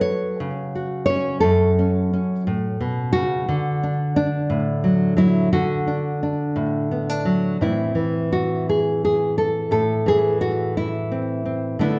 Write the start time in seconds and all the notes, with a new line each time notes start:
Already playing: F#3 A4
0.01 C#5
0.40 C#3
0.75 F#4
1.06 C#5
1.10 C#4
1.40 F#2 A4
1.79 C#4
2.13 C#4
2.47 A2
2.81 B2
3.13 C#3 F#4
3.49 D3
3.83 D4
4.16 D4
4.50 A2
4.84 F#3
5.17 F#3 E4
5.53 D3 F#4
5.87 D4
6.23 D4
6.56 A2
6.91 B3
7.09 D4
7.25 F#3
7.61 A2 E3 C4 E4
7.95 E3
8.32 F#4
8.69 G#4
9.05 G#4
9.38 A4
9.71 A2 A4
10.06 E3 G#4
10.41 F#4
10.77 E4
11.11 C4
11.46 C4
11.79 D3 A3 B3 D4 E4